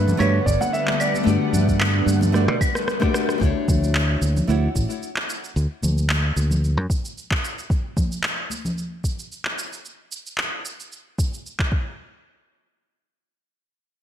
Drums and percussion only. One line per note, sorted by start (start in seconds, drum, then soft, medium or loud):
0.08 muted conga medium
0.08 low conga loud
0.08 shaker soft
0.20 claves medium
0.20 shaker soft
0.46 kick medium
0.46 shaker medium
0.61 muted conga medium
0.61 shaker soft
0.74 shaker soft
0.87 clap medium
0.87 muted conga medium
1.00 claves medium
1.00 shaker medium
1.14 muted conga medium
1.14 shaker soft
1.27 shaker soft
1.54 high conga medium
1.54 low conga loud
1.54 shaker medium
1.68 kick medium
1.68 shaker soft
1.80 clap medium
1.80 claves medium
1.80 shaker soft
2.07 high conga medium
2.07 shaker medium
2.21 muted conga medium
2.21 low conga loud
2.21 shaker soft
2.34 cross-stick medium
2.34 shaker soft
2.49 cross-stick medium
2.61 kick loud
2.61 claves medium
2.61 shaker medium
2.75 cross-stick medium
2.75 shaker soft
2.88 cross-stick medium
2.88 shaker soft
3.02 kick loud
3.02 cross-stick medium
3.02 muted conga medium
3.14 cross-stick loud
3.14 shaker medium
3.29 cross-stick medium
3.29 shaker soft
3.42 kick loud
3.42 shaker soft
3.68 kick loud
3.68 high conga medium
3.68 low conga medium
3.68 shaker medium
3.84 shaker soft
3.95 clap medium
3.95 shaker soft
4.22 high conga medium
4.22 shaker medium
4.37 low conga loud
4.37 shaker soft
4.49 shaker soft
4.76 kick medium
4.76 shaker medium
4.90 shaker soft
5.03 shaker soft
5.16 clap medium
5.30 shaker medium
5.44 shaker soft
5.57 shaker soft
5.82 high conga medium
5.82 low conga medium
5.82 shaker medium
5.98 shaker soft
6.10 clap medium
6.10 shaker soft
6.36 high conga medium
6.36 shaker medium
6.50 low conga medium
6.50 shaker soft
6.64 shaker soft
6.90 kick loud
6.90 shaker medium
7.05 shaker soft
7.18 shaker soft
7.31 kick loud
7.31 clap medium
7.45 shaker medium
7.58 shaker soft
7.70 kick loud
7.70 shaker soft
7.97 kick medium
7.97 high conga medium
7.97 low conga medium
7.97 shaker medium
8.12 shaker soft
8.23 clap medium
8.23 shaker soft
8.50 high conga medium
8.50 shaker medium
8.65 low conga loud
8.65 shaker soft
8.78 shaker soft
9.04 kick medium
9.04 shaker medium
9.19 shaker soft
9.32 shaker soft
9.45 clap medium
9.59 shaker medium
9.73 shaker soft
9.85 shaker soft
10.12 shaker medium
10.26 shaker soft
10.38 clap medium
10.38 shaker soft
10.65 shaker medium
10.80 shaker soft
10.92 shaker soft
11.19 kick medium
11.19 shaker medium
11.34 shaker soft
11.46 shaker soft
11.59 kick medium
11.59 clap medium
11.72 kick medium